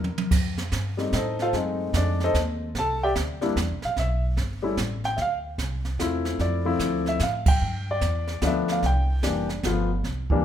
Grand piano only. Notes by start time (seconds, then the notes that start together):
Already playing: A#4
0.97 G3 A3 C4 D#4
1.15 D#4 A4 C5 D#5
1.42 F4 A4 C5 F5
1.53 G#3 A3 C4 D#4
1.97 D4 D5
2.24 D#4 A4 C5 D#5
2.79 A4 A5
3.03 G4 D5 E5 G5
3.41 G3 A#3 D4 E4
3.85 F5
3.99 E5
4.62 G3 A3 C#4 E4
5.05 G5
5.17 E5
5.22 F5
5.99 A3 C4 E4 F4
6.41 D5
6.65 F3 A3 C4 E4
7.09 E5
7.23 F5
7.48 G5
7.91 D5
8.42 F3 A3 B3 D4
8.46 E5
8.72 F5
8.86 G5
9.23 E3 G3 A#3 D4
9.65 F3 A3 B3 F4
10.31 E3 G3 A#3 D4